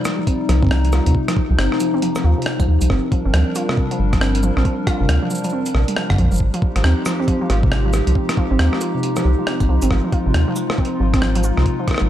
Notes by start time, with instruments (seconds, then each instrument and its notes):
Already playing: ambient pad C3 G3 D#4
0.05 synth pluck F3, cross-stick, closed hi-hat, cabasa
0.19 synth pluck F3
0.27 synth pluck C4, kick, closed hi-hat
0.49 analog synth bass C2, synth pluck F3, cross-stick, closed hi-hat
0.63 synth pluck C4, kick
0.65 kick
0.67 kick
0.69 synth pluck F3, kick, cross-stick
0.85 closed hi-hat
0.93 synth pluck F4, cross-stick, cabasa
1.06 analog synth bass D#2, synth pluck C3, closed hi-hat
1.15 ambient pad F3, kick
1.28 synth pluck F3, cross-stick, closed hi-hat
1.37 synth pluck F3, kick
1.50 analog synth bass C2, synth pluck F3
1.59 analog synth bass G1, synth pluck C4, cross-stick, closed hi-hat
1.72 cross-stick
1.80 synth pluck F3, closed hi-hat, cabasa
1.94 synth pluck C4
2.02 synth pluck F3, closed hi-hat
2.16 cross-stick, cabasa
2.24 analog synth bass D#2, synth pluck F4
2.38 synth pluck C3
2.42 closed hi-hat
2.46 cross-stick
2.60 analog synth bass C2, synth pluck F3, kick, closed hi-hat
2.68 analog synth bass D#2, synth pluck F3
2.82 analog synth bass C2, synth pluck F3, closed hi-hat, cabasa
2.90 analog synth bass G1, ambient pad G3 D4 A#4, synth pluck C4, kick, cross-stick
3.12 synth pluck F3, kick, closed hi-hat
3.25 analog synth bass G1, synth pluck C4
3.34 analog synth bass D2, synth pluck F3, cross-stick, closed hi-hat
3.56 synth pluck F4, closed hi-hat, cabasa
3.69 synth pluck C3, cross-stick
3.77 kick
3.91 synth pluck F3, closed hi-hat
3.99 analog synth bass G1, synth pluck F3
4.13 synth pluck F3, kick, cross-stick, closed hi-hat
4.21 synth pluck C4, cross-stick
4.35 closed hi-hat
4.43 synth pluck F3, cabasa
4.57 analog synth bass A#1, synth pluck C4, cross-stick
4.65 synth pluck F3, kick, closed hi-hat
4.87 synth pluck F4, kick, cross-stick, closed hi-hat
5.01 analog synth bass G1, synth pluck C3
5.09 analog synth bass D2, cross-stick, closed hi-hat
5.23 synth pluck F3
5.31 synth pluck F3, cabasa
5.35 cabasa
5.38 cabasa
5.44 synth pluck F3, closed hi-hat, cabasa
5.50 synth pluck C4, cabasa
5.66 closed hi-hat, cabasa
5.75 analog synth bass A#1, synth pluck C3, cross-stick
5.88 synth pluck G3, closed hi-hat
5.96 synth pluck F3, cross-stick
6.10 analog synth bass G1, kick, cross-stick
6.12 kick
6.14 kick
6.16 synth pluck F3, kick
6.18 analog synth bass A#1, kick, closed hi-hat
6.22 kick
6.25 kick
6.29 analog synth bass G1, synth pluck F3, kick, cabasa
6.34 cabasa
6.36 cabasa
6.38 analog synth bass G#1, ambient pad G#3 D#4 G4, kick, cabasa
6.54 synth pluck F3, closed hi-hat
6.62 synth pluck F3, kick
6.76 analog synth bass G#1, synth pluck F3, cross-stick, closed hi-hat
6.84 analog synth bass D#2, synth pluck C4, cross-stick
7.06 synth pluck F3, cross-stick, closed hi-hat, cabasa
7.20 synth pluck C4
7.28 synth pluck F3, kick, closed hi-hat
7.41 synth pluck F3
7.50 analog synth bass G#1, synth pluck F4, cross-stick, closed hi-hat
7.63 synth pluck C3, kick
7.72 cross-stick
7.85 synth pluck F3
7.94 synth pluck F3, cross-stick, cabasa
8.07 analog synth bass C2, synth pluck F3, closed hi-hat
8.15 synth pluck C4, kick
8.29 cross-stick, closed hi-hat
8.37 synth pluck F3, kick
8.51 analog synth bass G#1, synth pluck C4
8.59 analog synth bass D#2, synth pluck F3, cross-stick, closed hi-hat
8.73 synth pluck F3, cross-stick
8.81 synth pluck F4, closed hi-hat, cabasa
8.95 synth pluck C3
9.03 closed hi-hat
9.17 synth pluck F3, cross-stick, cabasa
9.25 analog synth bass C2, synth pluck F3
9.38 synth pluck F3
9.47 synth pluck C4, cross-stick, closed hi-hat
9.60 analog synth bass G#1, kick, closed hi-hat
9.69 analog synth bass C2, synth pluck F3
9.82 analog synth bass G#1, synth pluck C4, closed hi-hat, cabasa
9.91 analog synth bass G#1, synth pluck F3, ambient pad F4, kick, cross-stick
10.04 synth pluck F3
10.12 synth pluck F4, kick, closed hi-hat
10.26 analog synth bass G#1, synth pluck C3
10.34 analog synth bass D#2, cross-stick, closed hi-hat
10.48 synth pluck F3
10.56 synth pluck F3, closed hi-hat, cabasa
10.70 synth pluck F3, cross-stick
10.78 synth pluck C4, kick
10.85 closed hi-hat
11.00 analog synth bass G#1, synth pluck F3
11.14 synth pluck C4, kick, cross-stick, closed hi-hat
11.22 synth pluck F3, cross-stick
11.35 synth pluck F3, closed hi-hat
11.44 synth pluck F4, cabasa
11.57 analog synth bass C2, synth pluck C3, cross-stick
11.66 kick, closed hi-hat
11.79 synth pluck F3
11.88 synth pluck F3, kick, cross-stick, closed hi-hat
11.91 cross-stick
11.94 cross-stick
11.98 analog synth bass G#1, synth pluck F3, cross-stick